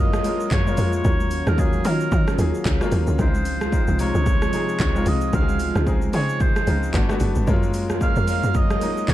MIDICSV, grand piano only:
0, 0, Header, 1, 2, 480
1, 0, Start_track
1, 0, Key_signature, -5, "major"
1, 0, Tempo, 535714
1, 939, Time_signature, 4, 2, 24, 8
1, 8189, End_track
2, 0, Start_track
2, 0, Title_t, "Grand piano"
2, 0, Program_c, 0, 0
2, 0, Control_c, 0, 64, 127
2, 0, Note_on_c, 0, 56, 81
2, 0, Note_on_c, 0, 58, 72
2, 0, Note_on_c, 0, 61, 69
2, 0, Note_on_c, 0, 64, 68
2, 0, Note_on_c, 0, 65, 89
2, 134, Note_off_c, 0, 56, 0
2, 138, Note_off_c, 0, 58, 0
2, 142, Note_off_c, 0, 61, 0
2, 175, Note_off_c, 0, 65, 0
2, 211, Note_on_c, 0, 56, 73
2, 219, Note_on_c, 0, 58, 66
2, 227, Note_on_c, 0, 61, 68
2, 235, Note_on_c, 0, 65, 77
2, 511, Note_off_c, 0, 56, 0
2, 515, Note_off_c, 0, 58, 0
2, 519, Note_off_c, 0, 61, 0
2, 523, Note_off_c, 0, 65, 0
2, 590, Note_on_c, 0, 56, 77
2, 598, Note_on_c, 0, 58, 70
2, 606, Note_on_c, 0, 61, 70
2, 614, Note_on_c, 0, 65, 86
2, 874, Note_off_c, 0, 56, 0
2, 878, Note_off_c, 0, 58, 0
2, 882, Note_off_c, 0, 61, 0
2, 886, Note_off_c, 0, 65, 0
2, 931, Note_on_c, 0, 54, 75
2, 939, Note_on_c, 0, 58, 71
2, 947, Note_on_c, 0, 61, 68
2, 952, Control_c, 0, 64, 0
2, 955, Note_on_c, 0, 65, 80
2, 961, Note_off_c, 0, 64, 0
2, 1104, Control_c, 0, 64, 127
2, 1334, Note_off_c, 0, 54, 0
2, 1338, Note_off_c, 0, 58, 0
2, 1342, Note_off_c, 0, 61, 0
2, 1346, Note_off_c, 0, 65, 0
2, 1411, Note_on_c, 0, 54, 72
2, 1419, Note_on_c, 0, 58, 69
2, 1428, Note_on_c, 0, 61, 67
2, 1435, Note_on_c, 0, 65, 79
2, 1615, Note_off_c, 0, 54, 0
2, 1619, Note_off_c, 0, 58, 0
2, 1623, Note_off_c, 0, 61, 0
2, 1627, Note_off_c, 0, 65, 0
2, 1652, Note_on_c, 0, 53, 60
2, 1659, Note_on_c, 0, 58, 69
2, 1668, Note_on_c, 0, 61, 68
2, 1676, Note_on_c, 0, 65, 83
2, 1709, Note_on_c, 0, 54, 76
2, 1722, Note_off_c, 0, 53, 0
2, 2058, Note_off_c, 0, 58, 0
2, 2063, Note_off_c, 0, 61, 0
2, 2067, Note_off_c, 0, 65, 0
2, 2083, Note_off_c, 0, 54, 0
2, 2130, Note_on_c, 0, 54, 72
2, 2138, Note_on_c, 0, 58, 66
2, 2147, Note_on_c, 0, 61, 65
2, 2155, Note_on_c, 0, 68, 82
2, 2430, Note_off_c, 0, 54, 0
2, 2434, Note_off_c, 0, 58, 0
2, 2438, Note_off_c, 0, 61, 0
2, 2442, Note_off_c, 0, 68, 0
2, 2511, Note_on_c, 0, 54, 94
2, 2518, Note_on_c, 0, 58, 84
2, 2526, Note_on_c, 0, 61, 87
2, 2534, Note_on_c, 0, 65, 101
2, 2795, Note_off_c, 0, 54, 0
2, 2798, Note_off_c, 0, 58, 0
2, 2802, Note_off_c, 0, 61, 0
2, 2806, Note_off_c, 0, 65, 0
2, 2851, Note_on_c, 0, 56, 77
2, 2859, Note_on_c, 0, 60, 69
2, 2867, Note_on_c, 0, 63, 71
2, 2870, Control_c, 0, 64, 0
2, 2875, Note_on_c, 0, 64, 66
2, 2933, Note_on_c, 0, 65, 83
2, 2934, Note_off_c, 0, 64, 0
2, 3038, Control_c, 0, 64, 127
2, 3254, Note_off_c, 0, 56, 0
2, 3258, Note_off_c, 0, 60, 0
2, 3262, Note_off_c, 0, 63, 0
2, 3295, Note_off_c, 0, 65, 0
2, 3332, Note_on_c, 0, 56, 72
2, 3339, Note_on_c, 0, 60, 65
2, 3348, Note_on_c, 0, 63, 67
2, 3356, Note_on_c, 0, 65, 77
2, 3535, Note_off_c, 0, 56, 0
2, 3539, Note_off_c, 0, 60, 0
2, 3543, Note_off_c, 0, 63, 0
2, 3547, Note_off_c, 0, 65, 0
2, 3571, Note_on_c, 0, 56, 77
2, 3580, Note_on_c, 0, 48, 72
2, 3588, Note_on_c, 0, 63, 71
2, 3596, Note_on_c, 0, 65, 83
2, 3974, Note_off_c, 0, 56, 0
2, 3979, Note_off_c, 0, 48, 0
2, 3983, Note_off_c, 0, 63, 0
2, 3987, Note_off_c, 0, 65, 0
2, 4052, Note_on_c, 0, 56, 71
2, 4060, Note_on_c, 0, 48, 65
2, 4068, Note_on_c, 0, 63, 68
2, 4076, Note_on_c, 0, 68, 81
2, 4351, Note_off_c, 0, 56, 0
2, 4355, Note_off_c, 0, 48, 0
2, 4359, Note_off_c, 0, 63, 0
2, 4363, Note_off_c, 0, 68, 0
2, 4430, Note_on_c, 0, 56, 77
2, 4439, Note_on_c, 0, 60, 70
2, 4447, Note_on_c, 0, 63, 71
2, 4455, Note_on_c, 0, 65, 89
2, 4714, Note_off_c, 0, 56, 0
2, 4719, Note_off_c, 0, 60, 0
2, 4723, Note_off_c, 0, 63, 0
2, 4727, Note_off_c, 0, 65, 0
2, 4771, Note_on_c, 0, 56, 78
2, 4779, Note_on_c, 0, 60, 68
2, 4787, Note_on_c, 0, 63, 69
2, 4795, Note_on_c, 0, 66, 67
2, 4852, Note_on_c, 0, 68, 81
2, 4854, Note_off_c, 0, 66, 0
2, 5174, Note_off_c, 0, 56, 0
2, 5178, Note_off_c, 0, 60, 0
2, 5182, Note_off_c, 0, 63, 0
2, 5215, Note_off_c, 0, 68, 0
2, 5252, Note_on_c, 0, 56, 73
2, 5260, Note_on_c, 0, 60, 66
2, 5268, Note_on_c, 0, 63, 69
2, 5276, Note_on_c, 0, 68, 81
2, 5455, Note_off_c, 0, 56, 0
2, 5459, Note_off_c, 0, 60, 0
2, 5463, Note_off_c, 0, 63, 0
2, 5467, Note_off_c, 0, 68, 0
2, 5491, Note_on_c, 0, 56, 79
2, 5499, Note_on_c, 0, 60, 72
2, 5507, Note_on_c, 0, 63, 73
2, 5515, Note_on_c, 0, 68, 89
2, 5894, Note_off_c, 0, 56, 0
2, 5898, Note_off_c, 0, 60, 0
2, 5902, Note_off_c, 0, 63, 0
2, 5906, Note_off_c, 0, 68, 0
2, 5971, Note_on_c, 0, 56, 73
2, 5979, Note_on_c, 0, 60, 67
2, 5987, Note_on_c, 0, 63, 69
2, 5996, Note_on_c, 0, 65, 81
2, 6211, Note_on_c, 0, 57, 79
2, 6215, Note_off_c, 0, 56, 0
2, 6219, Note_off_c, 0, 60, 0
2, 6219, Note_on_c, 0, 59, 75
2, 6223, Note_off_c, 0, 63, 0
2, 6227, Note_off_c, 0, 65, 0
2, 6228, Note_on_c, 0, 62, 77
2, 6229, Control_c, 0, 64, 0
2, 6236, Note_on_c, 0, 66, 85
2, 6326, Note_off_c, 0, 57, 0
2, 6330, Note_off_c, 0, 59, 0
2, 6334, Note_off_c, 0, 62, 0
2, 6338, Note_off_c, 0, 66, 0
2, 6351, Note_on_c, 0, 57, 95
2, 6359, Note_on_c, 0, 59, 84
2, 6367, Note_on_c, 0, 62, 84
2, 6375, Note_on_c, 0, 66, 104
2, 6396, Control_c, 0, 64, 127
2, 6635, Note_off_c, 0, 57, 0
2, 6639, Note_off_c, 0, 59, 0
2, 6643, Note_off_c, 0, 62, 0
2, 6647, Note_off_c, 0, 66, 0
2, 6692, Note_on_c, 0, 56, 93
2, 6700, Note_on_c, 0, 58, 80
2, 6708, Note_on_c, 0, 61, 82
2, 6711, Control_c, 0, 64, 0
2, 6716, Note_on_c, 0, 65, 103
2, 6871, Control_c, 0, 64, 127
2, 7095, Note_off_c, 0, 56, 0
2, 7098, Note_off_c, 0, 58, 0
2, 7103, Note_off_c, 0, 61, 0
2, 7107, Note_off_c, 0, 65, 0
2, 7172, Note_on_c, 0, 56, 75
2, 7180, Note_on_c, 0, 58, 69
2, 7188, Note_on_c, 0, 61, 66
2, 7196, Note_on_c, 0, 65, 81
2, 7375, Note_off_c, 0, 56, 0
2, 7379, Note_off_c, 0, 58, 0
2, 7383, Note_off_c, 0, 61, 0
2, 7387, Note_off_c, 0, 65, 0
2, 7411, Note_on_c, 0, 56, 80
2, 7420, Note_on_c, 0, 58, 70
2, 7428, Note_on_c, 0, 61, 70
2, 7436, Note_on_c, 0, 65, 86
2, 7814, Note_off_c, 0, 56, 0
2, 7819, Note_off_c, 0, 58, 0
2, 7822, Note_off_c, 0, 61, 0
2, 7827, Note_off_c, 0, 65, 0
2, 7891, Note_on_c, 0, 56, 72
2, 7899, Note_on_c, 0, 58, 71
2, 7907, Note_on_c, 0, 61, 65
2, 7915, Note_on_c, 0, 63, 85
2, 8189, Note_off_c, 0, 56, 0
2, 8189, Note_off_c, 0, 58, 0
2, 8189, Note_off_c, 0, 61, 0
2, 8189, Note_off_c, 0, 63, 0
2, 8189, End_track
0, 0, End_of_file